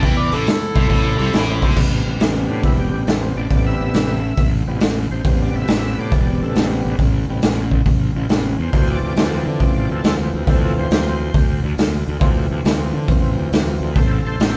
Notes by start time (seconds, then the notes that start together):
Already playing: A3 C4 E4 C5
0.02 E2 E3 E5 G5, kick, open hi-hat
0.19 B4 D5
0.32 A1 A2 E4 A4, open hi-hat
0.47 snare, open hi-hat
0.75 C2 C3, kick, open hi-hat
0.89 A1 A2, kick, open hi-hat
1.18 C2 C3, open hi-hat
1.33 A1 A2, snare, open hi-hat
1.62 D2 D3, kick, open hi-hat
1.70 snare
1.77 A1 C3 G3 B3, kick, crash
2.06 A1
2.20 A1, snare, open hi-hat
2.49 A2 D4
2.63 E1 E4, kick, open hi-hat
2.79 G4
2.92 A1
3.07 A1 A4, snare, open hi-hat
3.22 C5
3.36 A1 D5
3.50 A1 C3 G3 B3, kick, open hi-hat
3.66 E5
3.79 A1
3.93 A1, snare, open hi-hat
4.37 A1, kick, open hi-hat
4.66 A1 C3 G3 B3
4.80 A1, snare, open hi-hat
5.11 A1 C5
5.25 A1 C3 G3 B3, kick, open hi-hat
5.42 D5
5.53 A1 E5
5.68 A1, snare, open hi-hat
5.98 A2 D5
6.12 E1, kick, open hi-hat
6.41 A1 A4
6.55 A1, snare, open hi-hat
6.85 A1
6.99 A1, kick, open hi-hat
7.29 A1 C3 G3 B3
7.42 A1, snare, open hi-hat
7.71 kick
7.86 A1, kick, open hi-hat
8.15 A1
8.29 A1 C3 G3 B3, snare, open hi-hat
8.59 E2 C5
8.73 D2 E3 F3 C4, kick, open hi-hat
8.91 D5
9.02 D2 D5
9.16 D2, snare, open hi-hat
9.46 D3 D5
9.60 A1, kick, open hi-hat
9.90 D2 A4
10.04 D2, snare, open hi-hat
10.34 D2
10.44 D2 E3 F3 C4 B4 C5, kick, open hi-hat
10.48 A4
10.64 F4 A4
10.77 D2 C5
10.90 D2, snare, open hi-hat
11.20 E3 F3 C4
11.34 D2, kick, open hi-hat
11.64 D2
11.78 D2, snare, open hi-hat
12.08 D2
12.20 D2 E3 F3 C4, kick, open hi-hat
12.50 D2
12.64 D2, snare, open hi-hat
12.93 D3
13.08 A1, kick, open hi-hat
13.37 D2
13.52 D2, snare, open hi-hat
13.81 D2
13.93 A1 A4 B4, kick, open hi-hat
13.97 C5
14.10 C4 A4
14.25 A1 A4 C5
14.40 A1, snare, open hi-hat